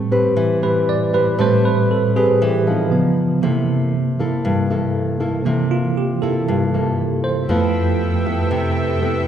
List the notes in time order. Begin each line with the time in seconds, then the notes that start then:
Already playing: A2 G3 A3 C4
0.11 C4 G4 B4
0.37 E3
0.62 C4 G4 B4
0.89 D5
1.13 C4 G4 B4
1.38 A2 G3 A3 C4 G4 B4 C5
1.65 B4
1.91 A4
2.16 C4 G4 G#4 B4
2.42 E3 G4
2.67 F3 B3 D#4
2.91 C#3 F3 B3
3.42 C3 E3 A#3 E4 A4
4.19 A#3 E4 A4
4.45 G2
4.70 A#3 E4 A4
5.20 A#3 E4 A4
5.45 C3 E3 A#3 E4 A4
5.71 F4
5.97 G4
6.22 A#3 E4 A4
6.48 G2
6.74 A#3 E4 A4
7.24 C5
7.48 F2 F3 A3 B3 E4 G4 A4 B4 E5 G5
8.26 B3 E4 A4
8.51 C3
9.01 B3 E4 A4